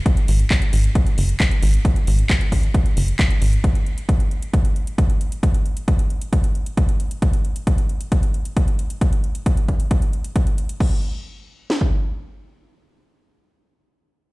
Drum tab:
CC |----------------|----------------|----------------|----------------|
HH |xxoxxxoxxxoxxxox|xxoxxxoxxxoxxxox|xxxxxxxxxxxxxxxx|xxxxxxxxxxxxxxxx|
CP |----x-------x---|----x-------x---|----------------|----------------|
SD |----------------|----------------|----------------|----------------|
BD |o---o---o---o---|o---o-o-o---o---|o---o---o---o---|o---o---o---o---|

CC |----------------|----------------|x---------------|----------------|
HH |xxxxxxxxxxxxxxxx|xxxxxxxxxxxxxxxx|----------------|----------------|
CP |----------------|----------------|----------------|----------------|
SD |----------------|----------------|--------o-------|----------------|
BD |o---o---o---o---|o---o-o-o---o---|o--------o------|----------------|